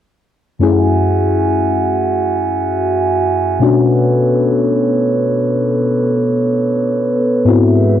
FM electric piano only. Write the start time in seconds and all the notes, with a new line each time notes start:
0.59 F#2 A3 C#4 E4
0.63 G#4
3.60 B2 A3 C#4 D4 F#4
7.45 G#2 B3 C4 E4
7.49 F#4